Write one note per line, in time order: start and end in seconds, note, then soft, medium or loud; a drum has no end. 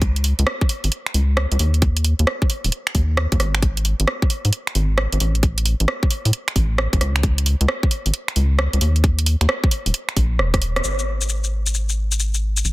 0.00 0.34 C#2 medium
0.00 kick loud
0.00 closed hi-hat medium
0.16 closed hi-hat medium
0.24 open hi-hat loud
0.39 0.45 C#2 loud
0.39 closed hi-hat medium
0.47 cross-stick loud
0.61 kick loud
0.69 open hi-hat loud
0.84 0.90 G#1 medium
0.84 open hi-hat medium
0.92 closed hi-hat medium
1.06 finger snap medium
1.06 closed hi-hat soft
1.14 1.46 C#2 medium
1.14 open hi-hat loud
1.37 cross-stick loud
1.52 1.58 C#2 loud
1.52 closed hi-hat soft
1.59 2.14 D#2 medium
1.59 open hi-hat loud
1.74 closed hi-hat soft
1.82 kick loud
1.82 closed hi-hat medium
1.97 closed hi-hat medium
2.04 open hi-hat loud
2.19 2.25 D#2 medium
2.19 closed hi-hat medium
2.27 cross-stick loud
2.42 kick loud
2.50 open hi-hat loud
2.64 2.71 D#1 medium
2.64 open hi-hat medium
2.72 closed hi-hat medium
2.87 finger snap medium
2.87 closed hi-hat soft
2.95 3.27 D#2 medium
2.95 kick medium
2.95 open hi-hat loud
3.17 cross-stick loud
3.32 3.38 D#2 loud
3.32 kick loud
3.32 closed hi-hat soft
3.40 3.94 G#1 loud
3.40 cross-stick medium
3.40 open hi-hat loud
3.55 finger snap medium
3.55 closed hi-hat soft
3.62 kick loud
3.62 closed hi-hat medium
3.77 closed hi-hat medium
3.85 open hi-hat loud
4.00 4.06 G#1 loud
4.00 closed hi-hat medium
4.08 cross-stick loud
4.22 kick loud
4.30 open hi-hat loud
4.45 4.51 G#2 medium
4.45 open hi-hat medium
4.53 closed hi-hat medium
4.67 finger snap medium
4.67 closed hi-hat soft
4.75 5.07 G#1 medium
4.75 open hi-hat medium
4.98 cross-stick loud
5.12 5.19 G#1 loud
5.12 closed hi-hat medium
5.20 5.75 A1 loud
5.20 open hi-hat loud
5.35 closed hi-hat soft
5.43 kick loud
5.43 closed hi-hat medium
5.58 closed hi-hat medium
5.66 open hi-hat loud
5.80 5.86 A1 medium
5.80 closed hi-hat medium
5.88 cross-stick loud
6.03 kick loud
6.11 open hi-hat loud
6.25 6.31 A2 medium
6.25 open hi-hat medium
6.33 closed hi-hat medium
6.48 finger snap medium
6.48 closed hi-hat soft
6.56 6.88 A1 medium
6.56 kick medium
6.56 open hi-hat loud
6.78 cross-stick loud
6.93 6.99 A1 loud
6.93 kick loud
6.93 closed hi-hat medium
7.01 7.55 C#2 loud
7.01 cross-stick medium
7.01 open hi-hat loud
7.16 finger snap medium
7.16 closed hi-hat soft
7.23 kick loud
7.23 closed hi-hat medium
7.38 closed hi-hat medium
7.46 open hi-hat loud
7.61 7.67 C#2 loud
7.61 closed hi-hat medium
7.68 cross-stick loud
7.83 kick loud
7.91 open hi-hat loud
8.06 8.12 G#1 medium
8.06 open hi-hat medium
8.14 closed hi-hat medium
8.28 finger snap medium
8.28 closed hi-hat soft
8.36 8.68 C#2 medium
8.36 open hi-hat loud
8.59 cross-stick loud
8.73 8.79 C#2 loud
8.73 closed hi-hat medium
8.81 9.36 D#2 loud
8.81 open hi-hat loud
8.96 closed hi-hat soft
9.04 kick loud
9.04 closed hi-hat medium
9.19 closed hi-hat medium
9.26 open hi-hat loud
9.41 9.47 D#2 medium
9.41 finger snap soft
9.41 closed hi-hat medium
9.49 cross-stick loud
9.64 kick loud
9.71 open hi-hat loud
9.86 9.92 D#1 medium
9.86 open hi-hat medium
9.94 closed hi-hat medium
10.09 finger snap medium
10.09 closed hi-hat soft
10.17 10.41 A#1 medium
10.17 kick medium
10.17 open hi-hat loud
10.39 10.81 D#1 loud
10.39 cross-stick medium
10.54 kick loud
10.54 cross-stick medium
10.54 closed hi-hat medium
10.62 open hi-hat loud
10.76 cross-stick medium
10.76 closed hi-hat soft
10.84 12.63 G#1 medium
10.84 shaker soft
10.99 shaker soft
11.21 shaker medium
11.29 shaker soft
11.44 shaker soft
11.66 shaker medium
11.74 shaker soft
11.89 shaker soft
12.12 shaker soft
12.20 shaker soft
12.34 shaker soft
12.57 shaker medium
12.65 12.73 A1 medium
12.65 shaker soft